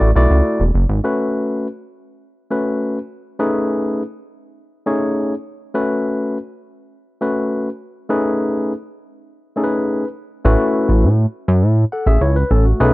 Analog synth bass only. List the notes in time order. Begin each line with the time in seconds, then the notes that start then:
0.01 A1
0.16 B1
0.31 C#2
0.60 E1
0.74 F#1
0.89 G#1
10.45 A1
10.89 A1
11.04 A2
11.48 F#2
11.62 A2
12.06 A1
12.21 C#2
12.51 A1
12.80 B1